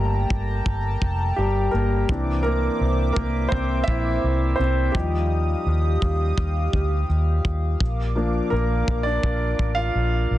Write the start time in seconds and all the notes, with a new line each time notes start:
Already playing: G1 G3 A3 A#3 G4 G5 A5 A#5
0.30 G1, kick
0.66 G1, kick
1.02 F1, kick
1.36 G1 G3 G4
1.71 G1 A#3 A#4
2.09 C2 E3 C4 D4 C5 E5 D6, kick
2.43 A#3 A#4
2.81 C2
3.13 C2 A#3 A#4, kick
3.49 C2 C4 C5, kick
3.84 E5
3.88 A#1 E4, kick
4.24 C2
4.56 C2 C4 C5
4.92 D#2 F3 G3 D#4 G4 F5 D#6, kick
5.66 D#2
6.02 D#2, kick
6.38 D#2, kick
6.73 D2, kick
7.09 D#2
7.45 D#2, kick
7.80 A#1 A#4 D6, kick
8.15 F3 A#3 D4
8.50 A#1 A#3 A#4
8.88 A#1, kick
9.03 D4 D5
9.23 A#1, kick
9.59 A1, kick
9.75 F4 F5
9.95 A#1
10.31 A#1